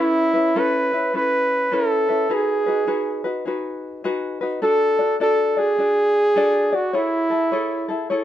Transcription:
Already playing: C#4 E4 A4
0.00 E4 B4
0.34 C#4 E4 B4
0.56 C#4 E4 A4 B4
0.92 C#4 E4 B4
1.13 C#4 E4 A4 B4
1.71 C#4 E4 A4 B4
2.08 C#4 E4 B4
2.30 D#4 F#4 G#4 B4
2.34 G#4
2.66 D#4 F#4 B4
2.87 D#4 F#4 G#4 B4
3.24 D#4 F#4 B4
3.45 D#4 F#4 G#4 B4
4.04 D#4 F#4 G#4 B4
4.41 D#4 F#4 B4
4.62 D4 F#4 A4 D5
4.99 D4 F#4 D5
5.20 D4 F#4 A4 D5
5.57 D4 F#4 G#4 D5
5.79 D4 F#4 D5
6.36 D4 F#4 A4 D5
6.72 D4 F#4 D5
6.93 E4 G#4 A4 C#5
7.30 E4 G#4 A4
7.52 E4 G#4 A4 C#5
7.88 E4 G#4 A4
8.10 E4 G#4 A4 C#5

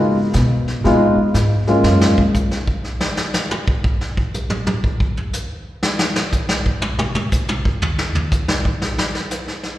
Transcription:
Already playing: C#3 G#3 B3 D#4 F4
0.33 B2, kick, snare, hi-hat pedal
0.68 snare
0.84 A#2 G#3 B3 D#4 F4, brush sweep, kick, snare
1.16 muted upright bass stroke
1.34 G#2, kick, snare, hi-hat pedal
1.67 G#3 A#3 C#4 F4, snare
1.84 F#2, snare
2.01 snare
2.18 kick
2.34 kick, hi-hat pedal
2.51 snare
2.67 kick
2.84 snare
3.01 snare
3.17 snare
3.33 snare, hi-hat pedal
3.51 high tom
3.68 kick
3.84 kick
4.01 snare
4.17 kick
4.34 hi-hat pedal, mid tom
4.50 mid tom
4.67 mid tom
4.84 kick
5.00 kick
5.17 floor tom
5.33 floor tom, hi-hat pedal
5.83 snare
5.99 snare
6.16 snare
6.32 kick, hi-hat pedal
6.49 snare
6.66 kick
6.82 high tom
6.99 high tom
7.15 high tom
7.32 kick, hi-hat pedal
7.49 high tom
7.65 kick
7.82 floor tom
7.99 snare
8.15 floor tom
8.31 kick, hi-hat pedal
8.48 snare
8.65 kick
8.82 snare
8.98 snare
9.15 snare
9.31 snare, hi-hat pedal
9.48 snare
9.63 snare

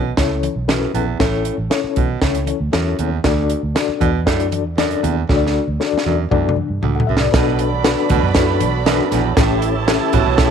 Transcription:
Already playing: B1 B2
0.17 C#2 A2 C#4 E4 A4 C#5, kick, snare, closed hi-hat, muted conga
0.43 closed hi-hat, high conga
0.56 B1
0.68 F#2 C#4 E4 A4 B4, snare, closed hi-hat, muted conga, high conga
0.82 muted conga
0.94 A#1 E2, closed hi-hat, low conga
1.19 A1 A2 C#4 E4 A4 C#5, kick, snare, closed hi-hat, muted conga, low conga
1.32 muted conga
1.45 closed hi-hat
1.58 A1
1.70 C#4 E4 A4 C#5, snare, closed hi-hat
1.84 muted fingered electric bass stroke
1.96 B1 B2, kick, closed hi-hat, high conga, low conga
2.22 C#2 A2 C#4 E4 A4 C#5, kick, snare, closed hi-hat, muted conga
2.35 closed hi-hat, muted conga
2.46 closed hi-hat, high conga
2.60 D2
2.73 E2 F#2 C#4 E4 A4 C#5, snare, closed hi-hat, high conga
2.99 D#2 E2, closed hi-hat, low conga
3.24 D2 D4 F#4 A4 D5, kick, snare, closed hi-hat, low conga
3.50 closed hi-hat
3.63 D2
3.75 D4 F#4 A4 D5, snare, closed hi-hat, muted conga
3.88 muted fingered electric bass stroke
4.01 E2 B2, kick, closed hi-hat, high conga, low conga
4.26 F#2 A2 D4 F#4 A4 D5, kick, snare, closed hi-hat
4.40 closed hi-hat
4.52 closed hi-hat, high conga
4.66 E2
4.77 F#2 D4 F#4 A4 D5, snare, closed hi-hat, muted conga, high conga
4.91 closed hi-hat
5.03 D#2 E2, closed hi-hat, low conga
5.29 D2 D4 F#4 A4 C#5, kick, snare, low conga
5.36 D5
5.41 muted conga
5.47 snare
5.68 D2, high conga
5.80 D4 F#4 A4 C#5, snare, muted conga
5.86 D5
5.93 muted fingered electric bass stroke, muted conga
5.98 snare
6.06 E2 F#2, high conga, low conga
6.31 E2 F#2 D4 F#4 A4 D5, kick, mid tom, muted conga
6.49 mid tom
6.56 high conga
6.70 G2
6.82 C#2 D2, floor tom, muted conga, high conga
6.95 A4 F#5, muted conga
7.00 floor tom
7.07 C2 F#2 E5, low conga
7.17 F#4 D5, snare
7.32 B1 B2 F#3 B3 C#4 D4 F#4 A4 B4 D5 B5, kick, snare, closed hi-hat, muted conga, low conga
7.39 D4
7.45 muted conga
7.59 closed hi-hat
7.72 high conga
7.84 D4 F#4 A4 B4, snare, closed hi-hat
8.09 D2 B2, kick, closed hi-hat, high conga, low conga
8.23 F#2
8.34 A2 D4 F#4 A4 B4, kick, snare, closed hi-hat
8.60 B1, closed hi-hat, high conga
8.86 F#2 C#4 F#4 A4 B4, snare, closed hi-hat, high conga
8.93 D4
8.99 muted conga
9.11 A#1 E2, snare, closed hi-hat, low conga
9.36 A1 A2 E3 A3 C#4 E4 G4 A4 C#5 A5, kick, snare, closed hi-hat, muted conga, low conga
9.49 muted conga
9.62 closed hi-hat
9.76 high conga
9.87 C#4 E4 G4 A4, snare, closed hi-hat, muted conga
10.02 muted conga
10.13 A1 B2, kick, closed hi-hat, high conga, low conga
10.26 B1
10.38 A2 C#4 E4 G4 G#4, kick, snare, closed hi-hat
10.45 A4

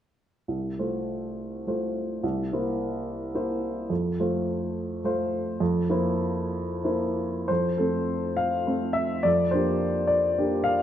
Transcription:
0.48 C2
0.79 A3 F4 C5
1.67 A3 F4 C5
2.23 C2
2.53 A#3 E4 C5
3.35 A#3 E4 C5
3.90 F2
4.20 A3 F4 C5
5.04 A3 F4 C5
5.60 F2
5.90 A#3 E4 C5
6.84 A#3 E4 C5
7.48 F2 C5
7.78 A3 C4 A4
8.37 F5
8.67 A3 C4 A4
8.93 E5
9.23 F2 D5
9.51 A#3 D4 G4 C5
10.07 D5
10.38 A#3 D4 G4
10.64 F5

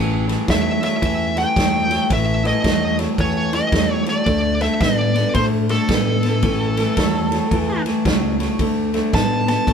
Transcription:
Already playing: A1 A2 E3
0.28 A2 E3, snare, ride
0.48 E2 A2 F#3 E5, kick, snare, ride
0.82 A2 F#3 E5, snare, ride
1.01 E2 A2 E3, kick, ride
1.36 A2 E3 G5, snare, ride
1.56 E2 A2 F#3, kick, snare, ride
1.90 A2 F#3, snare, ride
2.10 A1 A2 E3 E5, kick, ride
2.44 A2 E3 D#5, snare, ride
2.64 E2 A2 F#3, kick, snare, ride
2.99 A2 F#3, snare, ride
3.18 E2 A2 E3 C#5, kick, ride
3.53 A2 E3 D#5, snare, ride
3.72 E2 A2 F#3, kick, snare, ride
4.06 A2 F#3 D5, snare, ride
4.26 D2 D3 A3, kick, ride
4.61 D3 A3 E5, snare, ride
4.81 A2 D3 B3 D5, kick, snare, ride
5.16 D3 B3, snare, ride
5.34 A2 D3 A3 C5, kick, ride
5.69 D3 A3 A4, snare, ride
5.89 A2 D3 B3, kick, snare, ride
6.23 D3 B3, snare, ride
6.43 A1 A2 E3, kick, ride
6.77 A2 E3, snare, ride
6.97 E2 A2 F#3, kick, snare, ride
7.32 A2 F#3, snare, ride
7.51 E2 A2 E3, kick, ride
7.86 A2 E3, snare, ride
8.05 C#2 A2 F#3, kick, snare, ride
8.40 A2 F#3, snare, ride
8.59 D2 D3 A3, kick, ride
8.94 D3 A3, snare, ride
9.13 A2 D3 B3 A5, kick, snare, ride
9.48 D3 B3 A5, snare, ride
9.67 A2 D3 A3, kick, ride

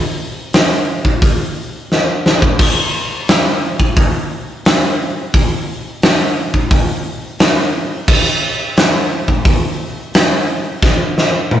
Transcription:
0.53 snare, open hi-hat
1.05 kick
1.22 kick, open hi-hat
1.92 snare
2.26 snare
2.42 kick
2.59 kick, open hi-hat, crash
3.28 snare, open hi-hat
3.80 kick
3.97 kick, open hi-hat
4.65 snare, open hi-hat
5.34 kick, open hi-hat
6.02 snare, open hi-hat
6.54 kick
6.71 kick, open hi-hat
7.39 snare, open hi-hat
8.08 kick, crash
8.77 snare, open hi-hat
9.28 kick
9.45 kick, open hi-hat
10.14 snare, open hi-hat
10.82 kick, snare
11.18 snare
11.51 high tom

